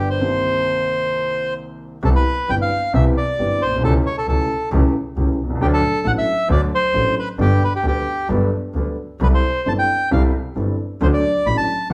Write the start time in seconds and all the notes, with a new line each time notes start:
Already playing: G1 G2 D3 G3 B3 G4
0.10 C5
0.19 C2 C3 D#3 A#3 C4
0.23 G4
2.02 C2 C3 E3 B3 C4 G4 A4
2.16 B4
2.48 G1 G2 E3 B3 C4 G4 G5
2.62 F5
2.93 C2 C3 E3 B3 C4 G4 E5
3.17 D5
3.39 G1 G2 E3 B3 C4 G4
3.61 B1 C5
3.67 A#1
3.72 B1
3.77 C2
3.82 C#2 C#3 E3 A3 C#4 G4 A4
4.06 C#5
4.18 A4
4.27 C#2 C#3 E3 A3 C#4 G4 A4
4.72 C#2 C#3 E3 A3 C#4 G4
5.16 C#2 C#3 E3 A3 C#4 G4
5.38 C2
5.44 B1
5.50 C2
5.55 C#2
5.60 D2 D3 F#3 A3 D4 G4 A4
5.73 A4
6.05 A1 A2 F#3 A3 D4 A4 F#5
6.18 E5
6.49 D2 D3 F#3 A3 D4 A4 D5
6.75 C5
6.94 A1 A2 F#3 A3 D4 A4
7.19 B4
7.37 G1 G2 G3 B3 D4 G4 A4
7.64 B4
7.76 G4
7.83 D2 D3 G3 B3 D4 A4
7.88 G4
8.29 G1 G2 G3 B3 D4 A4
8.74 D2 D3 G3 B3 D4 A4
9.20 C2 C3 G3 C4 E4 A4 B4
9.34 C5
9.65 G1 G2 G3 C4 E4 A4 A5
9.79 G5
10.11 C2 C3 G3 C4 E4 A4 F5
10.55 G1 G2 G3 C4 E4 A4
11.01 D2 D3 F#3 A3 D4 A4 C5
11.13 D5
11.46 A1 A2 F#3 A3 D4 A4 B5
11.57 A5
11.90 F#3